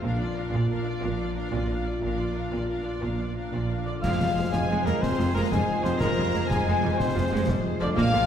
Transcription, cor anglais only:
3.86 D5
4.02 F5
4.52 G#5
4.86 A#4
5.02 C5
5.34 A#4
5.52 G#5
5.84 C5
6.00 A#4
6.49 G#5
6.99 C5
7.82 D5
7.97 F5

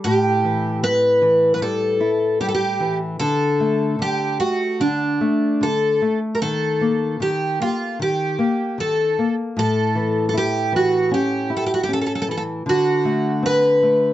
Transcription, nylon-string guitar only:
0.05 A2
0.44 E3
0.83 C4
1.22 E3
1.62 G3
2.00 E4
2.40 G3
2.80 E3
3.20 D3
3.60 A3
3.99 D3
4.40 A3
4.80 D3
5.21 A3
5.61 D3
6.02 A3
6.42 D#3
6.81 A#3
7.20 D#3
7.60 A#3
7.99 D#3
8.39 A#3
8.78 D#3
9.19 A#3
9.57 A2
9.95 E3
10.34 E4
10.72 E3
11.11 C#4
11.50 E4
11.89 C#4
12.28 E3
12.66 D3
13.05 A3
13.43 C4
13.83 A3

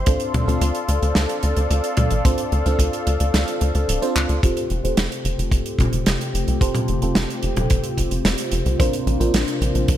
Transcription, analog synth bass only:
0.07 D2
0.34 D2
0.48 D2
0.61 D2
0.89 D2
1.02 D2
1.16 D2
1.43 D2
1.57 D2
1.70 D2
1.98 D2
2.11 A1
2.25 D2
2.52 D2
2.66 D2
2.79 D2
3.07 D2
3.20 D2
3.34 D2
3.61 D2
3.75 D2
3.89 D1
4.16 D2
4.29 D2
4.43 F1
4.70 F1
4.84 F1
4.98 F1
5.25 F1
5.39 F1
5.51 F1
5.79 F1
5.93 F1
6.07 F1
6.34 F1
6.48 C2
6.61 F1
6.89 F1
7.02 F1
7.16 F1
7.43 F1
7.57 F1
7.71 F1
7.98 F1
8.11 F1
8.25 F1
8.52 F1
8.66 C2
8.80 A#1
9.07 A#1
9.20 A#1
9.34 A#1
9.61 A#1
9.75 A#1
9.89 A#1

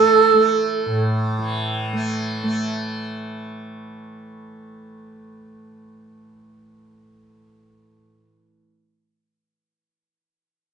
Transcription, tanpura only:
Already playing: A2 E3 A3
0.34 A3
0.86 A2
1.39 E3
1.93 A3
2.43 A3

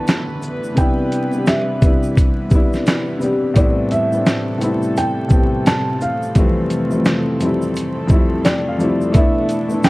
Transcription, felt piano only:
Already playing: A5
0.78 G5
1.47 E5
3.57 D5
3.92 E5
4.98 G5
5.67 A5
6.02 F5
8.45 D5
9.15 E5
9.85 G5

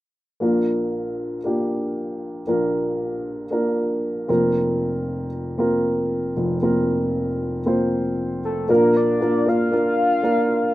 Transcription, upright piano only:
0.40 A#1 A#2 A#3 D4 F4 A#4
1.44 A#3 D4 F4 G4
2.47 A#1 A#2 A#3 D4 F4 A#4
3.51 A#3 D4 F4 A#4
4.28 F1 F2 A#3 C4 F4 A#4
5.58 A#3 C4 F4 A#4
6.37 F1 F2
6.62 A#3 C4 F4 A#4
7.66 A#3 C4 F4 C5
8.69 A#1 A#2 A#3 D4 F4 A#4
9.20 A#3 D4 F4 A#4
9.46 A#3 D4 F4 A#4
9.71 A#3 D4 F4 A#4
10.23 A#3 D4 F4 A#4

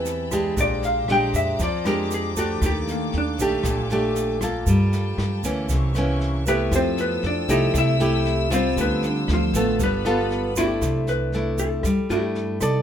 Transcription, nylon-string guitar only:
Already playing: E3 C4 G4 B4
0.32 G#3 D4 G4
0.58 A#2
1.10 G#3 D4 G4
1.60 F3
1.86 G#3 D4 G4
2.37 A3 D4 G4
2.64 D#3
3.40 A3 D4 G4
3.66 A#2
3.92 A3 D4 G4
4.42 A#3 F4 A4
4.68 G3
5.45 E3 A#3 C#4
5.71 C3
5.96 E3 A#3 C#4
6.47 A3 E4 G4
6.72 F3
7.49 A3 E4 G4
7.76 C3
8.00 A3 E4 G4
8.50 G3 C4 F4
8.78 D3
9.55 B3 F4 A4
9.80 G3
10.06 B3 F4 A4
10.57 A3 D4 E4
10.83 C3
11.35 A3 D4 E4
11.85 G3
12.11 A3 D4 E4
12.62 D#4 A4 D5

